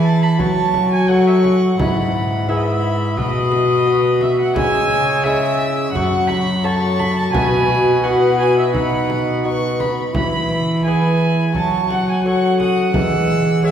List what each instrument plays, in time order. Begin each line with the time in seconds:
Already playing: lute E3 E4 G#4, cello E3, bassoon E4, violin B5
0.04 viola A5
0.22 viola B5
0.39 lute F#3, cello F#3, bassoon F#4, viola A5, violin C#6, frame drum
0.74 frame drum
0.92 viola G#5
1.08 lute C#4 F#4 A4, bassoon F#4, viola F#5, violin C#6
1.27 viola E5
1.42 viola F#5, frame drum
1.79 cello G#2, lute G#2, bassoon E4, violin B5, frame drum
2.48 lute B3 E4 G#4, bassoon E4, viola E5, violin B5
2.57 viola D#5
2.64 viola E5
3.17 cello B2, lute B2, bassoon F#4, viola D#5, violin B5, frame drum
3.52 frame drum
3.86 lute B3 F#4
4.21 viola E5, frame drum
4.40 viola F#5
4.55 cello C#3, lute C#3, bassoon G#3, viola G#5, violin E6, frame drum
5.24 lute G#3 C#4 E4, bassoon G#3, viola E5, violin E6
5.92 cello F#2, lute F#2, bassoon F#4, viola F#5, violin C#6, frame drum
6.28 viola B5, frame drum
6.64 lute A3 C#4 F#4, bassoon F#4, viola A5, violin C#6
6.99 viola B5, frame drum
7.16 viola A5
7.32 cello B2, lute B2, bassoon F#4, viola G#5, violin B5, frame drum
8.03 lute B3 E4 F#4, bassoon F#4, viola F#5, violin B5
8.38 viola G#5
8.58 viola E5
8.74 bassoon D#4, viola F#5, violin B5, frame drum
9.10 frame drum
9.44 lute B3 D#4 F#4, violin C#6
9.80 violin B5, frame drum
10.14 cello E3, lute E3, bassoon E4, violin B5, viola B5, frame drum
10.84 lute B3 E4 G#4, bassoon E4, viola G#5, violin B5
11.54 cello F#3, lute F#3, bassoon F#4, viola A5, violin C#6, frame drum
11.90 viola F#5, frame drum
12.09 viola G#5
12.24 lute C#4 A4, bassoon F#4, viola F#5, violin C#6
12.60 viola F#5, violin D#6, frame drum
12.93 lute E3, cello E3, bassoon G#3, violin E6, frame drum
13.63 lute G#3 C#4 G#4, bassoon G#3, viola E5, violin E6